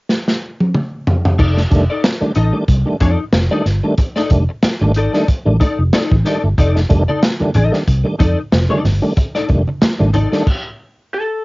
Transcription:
0.09 snare
0.28 snare
0.60 high tom
0.74 mid tom
1.07 floor tom
1.25 floor tom
1.39 F1 D#4 A4 D5, kick, crash
1.57 A3 D4, snare
1.70 F1 D#3 G3 A3 D4, muted clean electric guitar stroke, kick, closed hi-hat
1.90 D#4 A4 D5
2.04 snare, closed hi-hat
2.21 D#3 G3 A3 D4, muted fingered electric bass stroke, muted clean electric guitar stroke
2.35 A1 D#4 A4 D#5, closed hi-hat
2.52 D#3 G3 A3 D4, muted clean electric guitar stroke
2.68 C2, kick, closed hi-hat
2.85 D#3 G3 A3 D4, muted clean electric guitar stroke
3.00 F2 A3 D4 D#4 A4 D5, kick, closed hi-hat
3.19 muted clean electric guitar stroke
3.32 F1, muted clean electric guitar stroke, snare, closed hi-hat
3.51 D#3 G3 A3 D4 D#4 A4 D5
3.65 G1, snare, closed hi-hat
3.83 D#3 G3 A3 D4, muted clean electric guitar stroke
3.97 muted clean electric guitar stroke, kick, closed hi-hat
4.16 A3 D4 D#4 A4 D5, snare
4.30 F1 D#3 G3 A3 D4, kick, closed hi-hat
4.49 muted clean electric guitar stroke
4.62 muted clean electric guitar stroke, muted fingered electric bass stroke, snare, closed hi-hat
4.81 G#1 D#3 G3 A3 D4, muted clean electric guitar stroke
4.94 D#4 A4 D5, closed hi-hat
5.12 D#3 G3 A3 D4 D#4 A4 D5, snare
5.27 muted clean electric guitar stroke, muted fingered electric bass stroke, kick, closed hi-hat
5.45 A1 D#3 G3 A3 D4, muted clean electric guitar stroke
5.60 A3 D4 D#4 A4 D5, kick, closed hi-hat
5.79 F1, muted clean electric guitar stroke
5.93 D#4 A4 D5, muted fingered electric bass stroke, snare, closed hi-hat
6.12 A1, muted clean electric guitar stroke, kick
6.25 D#3 G3 A3 D4 D#4 A4 D5, snare, closed hi-hat
6.43 G1 A3 D4, muted clean electric guitar stroke
6.58 F1 D#4 A4 D5, kick, closed hi-hat, muted conga
6.75 A3 D4, snare
6.89 F1 D#3 G3 A3 D4, muted clean electric guitar stroke, kick, closed hi-hat, muted conga, high conga
7.08 D#4 A4 D5, high conga
7.23 snare, closed hi-hat
7.40 D#3 G3 A3 D4, muted fingered electric bass stroke, muted clean electric guitar stroke, high conga
7.54 A1 D#4 A4 D#5, closed hi-hat, muted conga, high conga, low conga
7.72 D#3 G3 A3 D4, muted clean electric guitar stroke, snare
7.88 C2, kick, closed hi-hat, muted conga
8.04 D#3 G3 A3 D4, muted clean electric guitar stroke
8.19 F2 A3 D4 D#4 A4 D5, kick, closed hi-hat, muted conga, high conga
8.39 muted clean electric guitar stroke
8.52 F1, muted clean electric guitar stroke, snare, closed hi-hat
8.69 D#3 G3 A3 D4 D#4 A4 D5, high conga
8.84 G1, muted clean electric guitar stroke, snare, open hi-hat, muted conga, low conga
9.02 D#3 G3 A3 D4, muted clean electric guitar stroke
9.17 muted clean electric guitar stroke, kick, closed hi-hat, muted conga
9.35 A3 D4 D#4 A4 D5, snare
9.48 F1 D#3 G3 A3 D4, muted clean electric guitar stroke, kick, closed hi-hat, high conga
9.67 muted clean electric guitar stroke, high conga
9.82 muted clean electric guitar stroke, muted fingered electric bass stroke, snare, closed hi-hat, muted conga
9.99 G#1 D#3 G3 A3 D4, muted clean electric guitar stroke, high conga
10.14 D#4 A4 D5, closed hi-hat, high conga, low conga
10.32 D#3 G3 A3 D4 D#4 A4 D5, snare
10.47 kick, crash
11.14 A4

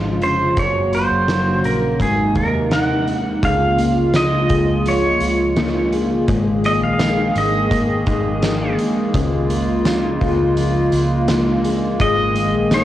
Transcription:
Already playing: G#1 C#3 F3 G#3 C#4 F4 G#4
0.21 F1 C#4 C5, closed hi-hat
0.57 F#1 F#2 F#3 A#3 F#4 C#5, kick, closed hi-hat
0.93 F#4 C5, closed hi-hat
1.11 F#1
1.28 A#4, snare, closed hi-hat
1.64 A#1 C#4 A#4, closed hi-hat
2.00 G#1 C3 G#3 D#4 G#4, kick, closed hi-hat
2.35 D#2 C4 A#4, kick, closed hi-hat
2.71 D#4 F#5, snare, closed hi-hat
3.07 C4, closed hi-hat
3.42 C#2 C#3 G#3 A#3 F4 G#4 F5, kick, closed hi-hat
3.78 A#3, closed hi-hat
4.14 F4 D#5, snare, closed hi-hat, tambourine
4.49 C#2 G#4, kick, closed hi-hat
4.86 F3 C#5, closed hi-hat
5.20 C#2 F4, closed hi-hat
5.56 A#3, snare, closed hi-hat, tambourine
5.93 G#4, closed hi-hat
6.28 G#1 D#3 G#3 G#4, kick, closed hi-hat
6.64 A#3 D#5, closed hi-hat
6.82 A#1 F5
6.99 D#4, snare, closed hi-hat, tambourine
7.35 G#1 G#4 D#5, closed hi-hat
7.71 A#3, kick, closed hi-hat
8.06 G#1 D#4, kick, closed hi-hat
8.42 A#3, snare, closed hi-hat, tambourine
8.78 G#4, closed hi-hat
9.14 C#2 C#3 F4 G#4, kick, closed hi-hat
9.49 A#3, closed hi-hat
9.85 F4, snare, closed hi-hat, tambourine
10.21 C#2 G#4, kick, closed hi-hat
10.57 F3, closed hi-hat
10.92 C#2 F4, closed hi-hat
11.28 A#3, snare, closed hi-hat, tambourine
11.64 G#4, closed hi-hat
12.00 G#1 D#3 G#3 G#4 D#5, kick, closed hi-hat
12.36 A#3, closed hi-hat
12.54 A#1
12.71 D#4 C#5, snare, closed hi-hat, tambourine

